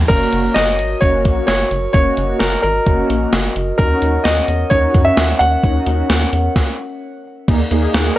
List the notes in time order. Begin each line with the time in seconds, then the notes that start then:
0.08 F#1 A#3 C#4 F#4 A#4 C#5, kick, closed hi-hat, crash
0.33 F#1, closed hi-hat
0.54 F#1 D#5, snare, closed hi-hat
0.79 G#1, closed hi-hat
1.01 F#1 A#3 C#4 F#4 C#5, kick, closed hi-hat
1.25 A#1, kick, closed hi-hat
1.47 F#1 C#5, snare, closed hi-hat
1.71 F#1, closed hi-hat
1.93 F#1 A#3 C#4 F#4 C#5 D#5, kick, closed hi-hat
2.17 F#1, closed hi-hat
2.39 F#1 A#4, snare, closed hi-hat
2.62 G#1 A#4, closed hi-hat
2.86 F#1 A#3 C#4 F#4, kick, closed hi-hat
3.10 A#1, closed hi-hat
3.33 F#1, snare, closed hi-hat
3.56 F#1, closed hi-hat
3.78 D#2 C#4 D#4 F#4 A#4 C#5 F#5, kick, closed hi-hat
4.02 D#2, closed hi-hat
4.24 D#2 D#5, snare, closed hi-hat
4.48 E2, closed hi-hat
4.70 D#2 C#4 D#4 F#4 C#5, kick, closed hi-hat
4.94 F#2, kick, closed hi-hat
5.05 E5
5.17 D#2, snare, closed hi-hat
5.39 D#2 F#5, closed hi-hat
5.64 D#2 C#4 D#4 F#4, kick, closed hi-hat
5.86 D#2, closed hi-hat
6.10 D#2, snare, closed hi-hat
6.33 E2, closed hi-hat
6.56 kick, snare
7.48 D#2 A#3 D#4 G#4 A#4, kick, closed hi-hat, crash
7.71 D#2 A#3 D#4 G#4, closed hi-hat
7.94 D#2, snare, closed hi-hat